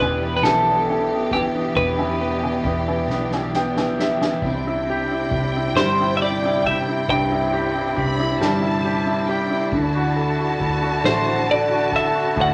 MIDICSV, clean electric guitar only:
0, 0, Header, 1, 2, 480
1, 0, Start_track
1, 0, Tempo, 887574
1, 946, Time_signature, 6, 3, 24, 8
1, 3354, Tempo, 881057
1, 6806, End_track
2, 0, Start_track
2, 0, Title_t, "Clean electric guitar"
2, 0, Program_c, 0, 27
2, 0, Note_on_c, 0, 71, 87
2, 191, Note_off_c, 0, 71, 0
2, 198, Note_on_c, 0, 71, 70
2, 234, Note_off_c, 0, 71, 0
2, 234, Note_on_c, 0, 69, 83
2, 717, Note_off_c, 0, 69, 0
2, 719, Note_on_c, 0, 67, 78
2, 782, Note_off_c, 0, 67, 0
2, 956, Note_on_c, 0, 71, 75
2, 1891, Note_off_c, 0, 71, 0
2, 3119, Note_on_c, 0, 72, 83
2, 3325, Note_off_c, 0, 72, 0
2, 3337, Note_on_c, 0, 76, 68
2, 3362, Note_off_c, 0, 76, 0
2, 3364, Note_on_c, 0, 74, 91
2, 3604, Note_off_c, 0, 74, 0
2, 3607, Note_on_c, 0, 76, 96
2, 3670, Note_off_c, 0, 76, 0
2, 3845, Note_on_c, 0, 79, 104
2, 5016, Note_off_c, 0, 79, 0
2, 5998, Note_on_c, 0, 72, 80
2, 6219, Note_off_c, 0, 72, 0
2, 6246, Note_on_c, 0, 74, 92
2, 6463, Note_off_c, 0, 74, 0
2, 6490, Note_on_c, 0, 76, 102
2, 6729, Note_off_c, 0, 76, 0
2, 6739, Note_on_c, 0, 78, 103
2, 6806, Note_off_c, 0, 78, 0
2, 6806, End_track
0, 0, End_of_file